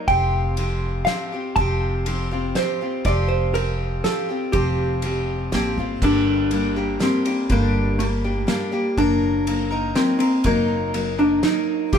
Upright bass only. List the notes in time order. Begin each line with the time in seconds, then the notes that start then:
0.08 F1
1.56 F1
3.05 F1
4.54 F1
5.53 A1
5.77 G1
6.02 G1
7.50 G1
8.97 F#1
10.45 F#1
11.93 F1